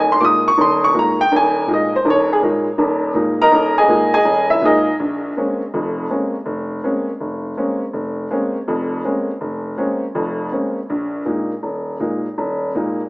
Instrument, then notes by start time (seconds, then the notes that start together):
upright piano
Already playing: D#1 D#2
0.00 G#5
0.12 C6
0.20 A#2 G#3 A#3 D#4 D6
0.25 D#6
0.48 C#6
0.58 D#1 D#2 C6
0.84 C#6
0.94 A#2 G#3 A#3 D#4
0.99 A#5
1.21 G5
1.32 D#1 D#2
1.36 G#5
1.67 A#2 G#3 A#3 D#4
1.74 D#5
1.96 C5
2.05 D#1 D#2
2.10 C#5
2.33 G#4
2.43 A#2 G#3 A#3 D#4
2.78 D#1 D#2
3.14 A#2 G#3 A#3 D#4
3.42 A#4 D#5 A#5
3.52 D#1 D#2
3.78 G#4 D#5 G#5
3.88 A#2 G#3 A#3 D#4
4.14 G#4 D#5 G#5
4.25 D#1
4.50 E4 E5
4.61 A#2 G#3 A#3 D#4
4.65 D#4 G#4 A#4 D#5
5.00 A#1
5.37 G#3 A#3 C4 C#4
5.74 F1 F2
6.10 G#3 A#3 C4 C#4
6.46 F1
6.84 G#3 A#3 C4 C#4
7.20 F1
7.57 G#3 A#3 C4 C#4
7.93 F1
8.31 G#3 A#3 C4 C#4
8.68 F1 F2
9.05 G#3 A#3 C4 C#4
9.41 F1
9.78 G#3 A#3 C4 C#4
10.15 F1 F2
10.52 G#3 A#3 C4 C#4
10.90 A#1
11.26 A#2 G#3 A#3 D#4
11.63 D#1
12.00 A#2 G#3 A#3 D#4
12.38 D#1
12.75 A#2 G#3 A#3 D#4